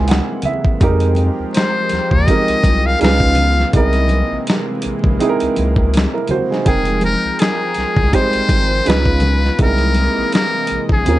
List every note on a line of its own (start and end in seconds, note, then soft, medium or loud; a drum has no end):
0.00 0.21 C#2 medium
0.00 0.77 C3 medium
0.00 0.77 E3 medium
0.00 0.62 G#3 medium
0.00 0.78 G#3 medium
0.00 0.78 A#3 medium
0.00 0.62 C4 medium
0.00 0.63 D#4 medium
0.00 0.63 E4 medium
0.00 0.64 G#4 loud
0.00 0.83 G#5 medium
0.00 0.82 C6 medium
0.08 0.42 F#5 medium
0.08 snare loud
0.08 closed hi-hat medium
0.42 0.79 E5 medium
0.42 closed hi-hat medium
0.42 high conga medium
0.42 low conga medium
0.65 kick medium
0.80 1.30 F2 loud
0.80 2.98 F3 medium
0.80 0.88 G3 medium
0.80 2.98 G#3 medium
0.80 2.09 C4 medium
0.80 2.09 D#4 medium
0.80 2.98 G4 medium
0.80 2.10 G4 medium
0.80 2.98 A#4 medium
0.80 2.10 A#4 medium
0.80 kick loud
0.80 closed hi-hat medium
0.80 low conga medium
0.87 2.11 G#3 medium
1.00 closed hi-hat soft
1.15 closed hi-hat soft
1.15 muted conga soft
1.15 high conga medium
1.40 1.46 D#2 soft
1.54 2.13 C5 medium
1.54 snare loud
1.54 closed hi-hat medium
1.54 muted conga soft
1.89 2.00 D#2 soft
1.89 snare soft
1.89 closed hi-hat medium
1.89 muted conga soft
2.11 2.26 D#2 medium
2.11 2.88 D#5 loud
2.11 kick medium
2.11 low conga medium
2.26 2.98 G#3 medium
2.26 3.00 C4 medium
2.26 3.00 D#4 medium
2.26 3.01 G4 medium
2.26 3.02 A#4 medium
2.26 kick medium
2.26 closed hi-hat medium
2.48 2.55 C2 medium
2.48 closed hi-hat medium
2.64 2.95 C2 medium
2.64 kick loud
2.64 closed hi-hat medium
2.64 muted conga soft
2.64 high conga medium
2.86 3.01 F5 loud
2.99 3.64 C#2 loud
2.99 3.73 C#3 medium
2.99 3.64 G#3 medium
2.99 3.72 B3 medium
2.99 3.64 C#4 medium
2.99 3.65 D#4 medium
2.99 3.72 F4 medium
2.99 3.65 F4 medium
2.99 3.66 B4 medium
2.99 3.70 F5 loud
2.99 closed hi-hat medium
2.99 muted conga soft
3.05 snare loud
3.20 kick medium
3.35 closed hi-hat medium
3.35 high conga medium
3.35 low conga medium
3.60 snare soft
3.73 4.23 C2 loud
3.73 6.63 C3 medium
3.73 6.63 E3 medium
3.73 5.01 G#3 medium
3.73 6.63 G#3 medium
3.73 6.63 A#3 medium
3.73 5.02 C4 medium
3.73 5.02 D#4 medium
3.73 5.02 E4 medium
3.73 5.03 A#4 medium
3.73 4.44 D#5 loud
3.73 kick loud
3.73 closed hi-hat medium
3.73 muted conga soft
3.73 low conga medium
3.93 closed hi-hat soft
4.08 closed hi-hat medium
4.08 muted conga soft
4.08 high conga medium
4.31 4.38 A#1 medium
4.47 snare loud
4.47 closed hi-hat medium
4.82 4.93 A#1 medium
4.82 closed hi-hat medium
4.82 muted conga soft
5.04 5.18 A#1 medium
5.04 kick loud
5.04 low conga soft
5.19 6.47 G#3 medium
5.19 6.48 C4 medium
5.19 5.57 D#4 medium
5.19 5.57 E4 medium
5.19 5.28 G#4 medium
5.19 closed hi-hat medium
5.19 muted conga soft
5.29 5.61 A#4 loud
5.40 5.48 C#2 soft
5.40 closed hi-hat medium
5.56 6.06 C#2 medium
5.56 closed hi-hat medium
5.56 high conga medium
5.76 kick medium
5.94 snare loud
5.94 closed hi-hat medium
5.94 muted conga soft
6.14 6.29 E4 medium
6.14 6.29 A#4 medium
6.27 6.49 F#4 medium
6.27 6.49 C5 medium
6.27 closed hi-hat medium
6.27 muted conga soft
6.27 high conga medium
6.27 low conga medium
6.51 6.65 D#4 medium
6.51 6.85 G#4 medium
6.51 snare soft
6.65 7.15 F1 loud
6.65 8.83 F3 medium
6.65 7.93 G#3 medium
6.65 8.83 G#3 medium
6.65 7.94 C4 medium
6.65 7.94 D#4 medium
6.65 7.01 G#4 medium
6.65 8.83 A#4 medium
6.65 7.95 A#4 medium
6.65 8.83 G5 medium
6.65 7.95 G5 medium
6.65 kick loud
6.65 closed hi-hat medium
6.65 low conga medium
6.85 closed hi-hat soft
7.01 7.41 A#4 loud
7.01 closed hi-hat medium
7.01 muted conga soft
7.01 high conga medium
7.25 7.31 C2 soft
7.39 8.16 G#4 medium
7.39 snare loud
7.39 closed hi-hat medium
7.39 muted conga soft
7.74 7.85 C2 medium
7.74 snare soft
7.74 closed hi-hat medium
7.74 muted conga soft
7.96 8.11 C2 medium
7.96 kick loud
7.96 low conga medium
8.12 8.19 G3 medium
8.12 8.86 C4 medium
8.12 8.85 D#4 medium
8.12 8.86 G4 medium
8.12 8.89 C5 loud
8.12 8.87 C5 medium
8.12 kick medium
8.12 closed hi-hat medium
8.18 8.84 G#3 medium
8.33 8.41 G#1 medium
8.33 closed hi-hat medium
8.49 8.81 G#1 medium
8.49 kick loud
8.49 closed hi-hat medium
8.49 muted conga soft
8.49 high conga medium
8.85 9.50 C#2 loud
8.85 9.58 C#3 medium
8.85 9.49 G#3 medium
8.85 9.58 B3 medium
8.85 9.50 C#4 medium
8.85 9.50 D#4 medium
8.85 9.58 F4 medium
8.85 9.51 F4 medium
8.85 9.60 B4 loud
8.85 9.51 B4 medium
8.85 closed hi-hat medium
8.85 muted conga soft
8.90 snare loud
9.06 kick medium
9.20 closed hi-hat medium
9.20 muted conga soft
9.20 high conga medium
9.20 low conga medium
9.45 snare soft
9.58 10.08 C2 loud
9.58 11.04 C3 medium
9.58 11.04 E3 medium
9.58 10.86 G#3 medium
9.58 11.19 G#3 medium
9.58 11.04 A#3 medium
9.58 10.87 C4 medium
9.58 10.87 D#4 medium
9.58 10.88 E4 medium
9.58 10.29 A#4 loud
9.58 10.88 A#4 medium
9.58 11.04 D#5 medium
9.58 kick loud
9.58 closed hi-hat medium
9.58 muted conga soft
9.58 low conga medium
9.78 closed hi-hat soft
9.94 closed hi-hat medium
9.94 muted conga soft
9.94 high conga medium
10.18 10.24 A#1 soft
10.32 10.86 A#4 loud
10.32 snare loud
10.32 closed hi-hat medium
10.32 muted conga soft
10.67 10.78 A#1 medium
10.67 closed hi-hat medium
10.89 11.04 A#1 medium
10.89 11.19 G#4 medium
10.89 kick loud
10.89 low conga medium
11.04 11.19 D#2 loud
11.04 11.19 C#3 medium
11.04 11.19 G#3 medium
11.04 11.19 C4 medium
11.04 11.19 C#4 medium
11.04 11.19 D#4 medium
11.04 11.19 F4 medium
11.04 closed hi-hat medium
11.04 muted conga soft
11.09 11.19 A#4 medium